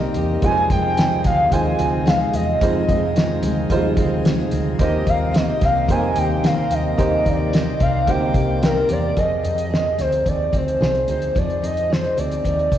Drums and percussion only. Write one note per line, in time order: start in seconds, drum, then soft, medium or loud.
0.14 closed hi-hat medium
0.42 kick loud
0.42 closed hi-hat medium
0.70 kick medium
0.70 closed hi-hat medium
0.97 snare loud
0.97 closed hi-hat medium
1.24 kick loud
1.24 snare soft
1.24 closed hi-hat medium
1.52 kick medium
1.52 closed hi-hat medium
1.79 closed hi-hat medium
2.07 snare loud
2.07 closed hi-hat medium
2.33 closed hi-hat medium
2.61 kick loud
2.61 closed hi-hat medium
2.89 kick medium
2.89 closed hi-hat medium
3.16 snare loud
3.16 closed hi-hat medium
3.43 closed hi-hat medium
3.70 kick medium
3.70 closed hi-hat medium
3.97 kick loud
3.97 closed hi-hat medium
4.25 snare loud
4.25 closed hi-hat medium
4.51 closed hi-hat medium
4.79 kick loud
4.79 closed hi-hat medium
5.07 kick medium
5.07 closed hi-hat medium
5.34 snare loud
5.34 closed hi-hat medium
5.61 kick loud
5.61 snare soft
5.61 closed hi-hat medium
5.89 kick medium
5.89 closed hi-hat medium
6.16 closed hi-hat medium
6.44 snare loud
6.44 closed hi-hat medium
6.71 closed hi-hat medium
6.99 kick loud
6.99 closed hi-hat medium
7.26 kick medium
7.26 closed hi-hat medium
7.53 snare loud
7.53 closed hi-hat medium
7.80 kick loud
7.80 closed hi-hat medium
8.07 kick medium
8.07 closed hi-hat medium
8.34 kick loud
8.34 closed hi-hat medium
8.63 snare loud
8.63 closed hi-hat medium
8.89 closed hi-hat medium
9.17 kick medium
9.17 closed hi-hat medium
9.44 closed hi-hat medium
9.58 closed hi-hat medium
9.74 snare loud
9.99 snare soft
9.99 closed hi-hat medium
10.12 closed hi-hat soft
10.26 kick medium
10.26 closed hi-hat medium
10.53 kick medium
10.53 closed hi-hat medium
10.68 closed hi-hat soft
10.82 snare loud
10.95 closed hi-hat soft
11.08 closed hi-hat medium
11.22 closed hi-hat soft
11.36 kick loud
11.36 closed hi-hat medium
11.50 closed hi-hat soft
11.64 closed hi-hat medium
11.77 closed hi-hat soft
11.93 snare loud
12.04 closed hi-hat soft
12.18 closed hi-hat medium
12.32 closed hi-hat soft
12.45 kick medium
12.45 closed hi-hat medium
12.59 closed hi-hat soft
12.72 kick medium
12.72 closed hi-hat medium